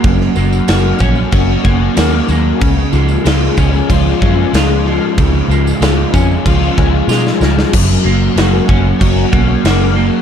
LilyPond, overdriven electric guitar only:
\new Staff \with { instrumentName = "Overdriven electric guitar" } { \time 4/4 \key fis \major \tempo 4 = 94 <fis, fis ais cis' fis'>8 fis8 ais8 cis'8 fis'8 cis'8 ais8 fis8 | cis8 eis8 gis8 cis'8 eis'8 cis'8 gis8 eis8 | cis8 eis8 gis8 cis'8 eis'8 cis'8 gis8 eis8 | fis,8 fis8 ais8 cis'8 fis'8 cis'8 ais8 fis8 | }